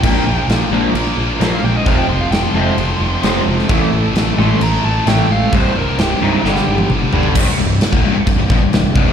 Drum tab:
CC |x---x---x---x---|x---x---x---x---|x---x---x---x---|x---x-----------|
SD |----o-------o---|----o-------o--o|----o-------o---|----o---oo------|
T1 |----------------|----------------|----------------|-----------o----|
T2 |----------------|----------------|----------------|------------o---|
FT |----------------|----------------|----------------|--------------oo|
BD |o---------------|o---------------|o---------------|o---------------|

CC |x---x---x---x---|
SD |----o-------o---|
T1 |----------------|
T2 |----------------|
FT |----------------|
BD |o----o--o-o---o-|